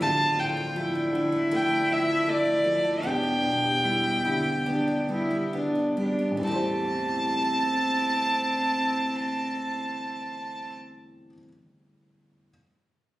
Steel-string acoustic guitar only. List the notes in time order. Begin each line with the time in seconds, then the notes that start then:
Already playing: B3 D4
0.01 F3 A4
0.20 D4
0.39 A3
0.57 A4
0.76 A3
0.95 D4
1.15 A4
1.32 A3
1.51 F3 A4
1.71 D4
1.89 A3
2.08 A4
2.26 A3
2.46 D4
2.64 A4
2.85 A3
3.03 B3 G4
3.23 D4
3.43 B3
3.64 G4
3.84 B3
4.04 D4
4.25 G4
4.44 B3
4.66 B3 G4
4.88 D4
5.09 B3
5.31 G4
5.53 B3
5.75 D4
5.97 G4
6.19 B3
6.37 E3
6.43 A3
6.47 C4
6.52 G4